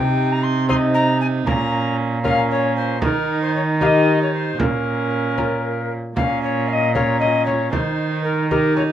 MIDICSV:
0, 0, Header, 1, 6, 480
1, 0, Start_track
1, 0, Tempo, 520833
1, 1350, Time_signature, 6, 3, 24, 8
1, 8222, End_track
2, 0, Start_track
2, 0, Title_t, "Recorder"
2, 0, Program_c, 0, 74
2, 0, Note_on_c, 0, 79, 110
2, 294, Note_on_c, 0, 82, 101
2, 308, Note_off_c, 0, 79, 0
2, 397, Note_on_c, 0, 84, 96
2, 411, Note_off_c, 0, 82, 0
2, 626, Note_off_c, 0, 84, 0
2, 632, Note_on_c, 0, 84, 127
2, 687, Note_off_c, 0, 84, 0
2, 866, Note_on_c, 0, 82, 124
2, 1103, Note_off_c, 0, 82, 0
2, 1111, Note_on_c, 0, 80, 114
2, 1167, Note_off_c, 0, 80, 0
2, 1347, Note_on_c, 0, 82, 103
2, 1805, Note_off_c, 0, 82, 0
2, 2082, Note_on_c, 0, 77, 125
2, 2296, Note_off_c, 0, 77, 0
2, 2307, Note_on_c, 0, 73, 112
2, 2540, Note_off_c, 0, 73, 0
2, 2546, Note_on_c, 0, 72, 107
2, 2779, Note_off_c, 0, 72, 0
2, 2784, Note_on_c, 0, 70, 108
2, 3136, Note_off_c, 0, 70, 0
2, 3150, Note_on_c, 0, 72, 99
2, 3264, Note_off_c, 0, 72, 0
2, 3277, Note_on_c, 0, 73, 92
2, 3332, Note_off_c, 0, 73, 0
2, 3518, Note_on_c, 0, 77, 103
2, 3555, Note_on_c, 0, 75, 112
2, 3564, Note_off_c, 0, 77, 0
2, 3866, Note_off_c, 0, 75, 0
2, 3885, Note_on_c, 0, 73, 87
2, 3990, Note_off_c, 0, 73, 0
2, 3995, Note_on_c, 0, 72, 98
2, 4233, Note_on_c, 0, 70, 94
2, 4247, Note_off_c, 0, 72, 0
2, 5445, Note_off_c, 0, 70, 0
2, 5680, Note_on_c, 0, 77, 102
2, 5907, Note_off_c, 0, 77, 0
2, 5921, Note_on_c, 0, 73, 109
2, 6157, Note_on_c, 0, 77, 98
2, 6171, Note_off_c, 0, 73, 0
2, 6200, Note_on_c, 0, 75, 106
2, 6209, Note_off_c, 0, 77, 0
2, 6393, Note_off_c, 0, 75, 0
2, 6398, Note_on_c, 0, 73, 116
2, 6628, Note_off_c, 0, 73, 0
2, 6633, Note_on_c, 0, 75, 114
2, 6865, Note_off_c, 0, 75, 0
2, 6870, Note_on_c, 0, 73, 107
2, 7099, Note_off_c, 0, 73, 0
2, 7104, Note_on_c, 0, 72, 106
2, 7582, Note_off_c, 0, 72, 0
2, 7590, Note_on_c, 0, 70, 100
2, 7827, Note_off_c, 0, 70, 0
2, 7832, Note_on_c, 0, 70, 104
2, 8070, Note_off_c, 0, 70, 0
2, 8076, Note_on_c, 0, 73, 111
2, 8131, Note_off_c, 0, 73, 0
2, 8222, End_track
3, 0, Start_track
3, 0, Title_t, "Lute"
3, 0, Program_c, 1, 24
3, 0, Note_on_c, 1, 48, 59
3, 633, Note_on_c, 1, 60, 66
3, 639, Note_on_c, 1, 63, 62
3, 643, Note_on_c, 1, 75, 68
3, 1313, Note_off_c, 1, 60, 0
3, 1316, Note_off_c, 1, 48, 0
3, 1316, Note_off_c, 1, 63, 0
3, 1318, Note_off_c, 1, 75, 0
3, 1354, Note_on_c, 1, 46, 63
3, 2064, Note_on_c, 1, 61, 65
3, 2070, Note_on_c, 1, 65, 57
3, 2074, Note_on_c, 1, 70, 68
3, 2745, Note_off_c, 1, 61, 0
3, 2747, Note_off_c, 1, 46, 0
3, 2747, Note_off_c, 1, 65, 0
3, 2750, Note_off_c, 1, 70, 0
3, 2786, Note_on_c, 1, 51, 62
3, 3513, Note_on_c, 1, 63, 59
3, 3518, Note_on_c, 1, 67, 57
3, 3520, Note_on_c, 1, 70, 68
3, 4194, Note_off_c, 1, 51, 0
3, 4198, Note_off_c, 1, 63, 0
3, 4199, Note_off_c, 1, 67, 0
3, 4201, Note_off_c, 1, 70, 0
3, 4238, Note_on_c, 1, 46, 60
3, 4955, Note_on_c, 1, 61, 52
3, 4959, Note_on_c, 1, 65, 53
3, 4962, Note_on_c, 1, 70, 58
3, 5466, Note_off_c, 1, 46, 0
3, 5649, Note_off_c, 1, 61, 0
3, 5651, Note_off_c, 1, 65, 0
3, 5651, Note_off_c, 1, 70, 0
3, 5678, Note_on_c, 1, 46, 61
3, 6405, Note_on_c, 1, 61, 55
3, 6409, Note_on_c, 1, 65, 59
3, 6416, Note_on_c, 1, 70, 62
3, 7082, Note_off_c, 1, 46, 0
3, 7085, Note_off_c, 1, 61, 0
3, 7088, Note_off_c, 1, 65, 0
3, 7089, Note_off_c, 1, 70, 0
3, 7120, Note_on_c, 1, 51, 58
3, 7842, Note_on_c, 1, 63, 57
3, 7847, Note_on_c, 1, 67, 58
3, 7851, Note_on_c, 1, 70, 63
3, 8222, Note_off_c, 1, 51, 0
3, 8222, Note_off_c, 1, 63, 0
3, 8222, Note_off_c, 1, 67, 0
3, 8222, Note_off_c, 1, 70, 0
3, 8222, End_track
4, 0, Start_track
4, 0, Title_t, "Viola"
4, 0, Program_c, 2, 41
4, 0, Note_on_c, 2, 63, 78
4, 620, Note_off_c, 2, 63, 0
4, 632, Note_on_c, 2, 63, 86
4, 1344, Note_on_c, 2, 61, 91
4, 1358, Note_off_c, 2, 63, 0
4, 2054, Note_off_c, 2, 61, 0
4, 2060, Note_on_c, 2, 61, 82
4, 2765, Note_off_c, 2, 61, 0
4, 2787, Note_on_c, 2, 63, 89
4, 3492, Note_off_c, 2, 63, 0
4, 3498, Note_on_c, 2, 63, 83
4, 4231, Note_on_c, 2, 61, 84
4, 4245, Note_off_c, 2, 63, 0
4, 5500, Note_off_c, 2, 61, 0
4, 5685, Note_on_c, 2, 61, 80
4, 6369, Note_off_c, 2, 61, 0
4, 6408, Note_on_c, 2, 61, 82
4, 7111, Note_on_c, 2, 63, 75
4, 7125, Note_off_c, 2, 61, 0
4, 7835, Note_off_c, 2, 63, 0
4, 7838, Note_on_c, 2, 63, 84
4, 8222, Note_off_c, 2, 63, 0
4, 8222, End_track
5, 0, Start_track
5, 0, Title_t, "Cello"
5, 0, Program_c, 3, 42
5, 0, Note_on_c, 3, 48, 95
5, 1324, Note_off_c, 3, 48, 0
5, 1355, Note_on_c, 3, 46, 94
5, 2782, Note_on_c, 3, 51, 92
5, 2796, Note_off_c, 3, 46, 0
5, 4223, Note_off_c, 3, 51, 0
5, 4228, Note_on_c, 3, 46, 75
5, 5473, Note_off_c, 3, 46, 0
5, 5680, Note_on_c, 3, 46, 85
5, 7114, Note_on_c, 3, 51, 88
5, 7127, Note_off_c, 3, 46, 0
5, 8222, Note_off_c, 3, 51, 0
5, 8222, End_track
6, 0, Start_track
6, 0, Title_t, "Frame drum"
6, 645, Note_on_c, 9, 64, 50
6, 737, Note_off_c, 9, 64, 0
6, 1356, Note_on_c, 9, 64, 81
6, 1448, Note_off_c, 9, 64, 0
6, 2075, Note_on_c, 9, 64, 57
6, 2167, Note_off_c, 9, 64, 0
6, 2781, Note_on_c, 9, 64, 82
6, 2873, Note_off_c, 9, 64, 0
6, 3510, Note_on_c, 9, 64, 52
6, 3602, Note_off_c, 9, 64, 0
6, 4236, Note_on_c, 9, 64, 87
6, 4328, Note_off_c, 9, 64, 0
6, 4955, Note_on_c, 9, 64, 47
6, 5047, Note_off_c, 9, 64, 0
6, 5683, Note_on_c, 9, 64, 80
6, 5775, Note_off_c, 9, 64, 0
6, 6408, Note_on_c, 9, 64, 52
6, 6500, Note_off_c, 9, 64, 0
6, 6650, Note_on_c, 9, 64, 50
6, 6743, Note_off_c, 9, 64, 0
6, 6885, Note_on_c, 9, 64, 50
6, 6977, Note_off_c, 9, 64, 0
6, 7122, Note_on_c, 9, 64, 80
6, 7214, Note_off_c, 9, 64, 0
6, 7843, Note_on_c, 9, 64, 54
6, 7935, Note_off_c, 9, 64, 0
6, 8079, Note_on_c, 9, 64, 52
6, 8171, Note_off_c, 9, 64, 0
6, 8222, End_track
0, 0, End_of_file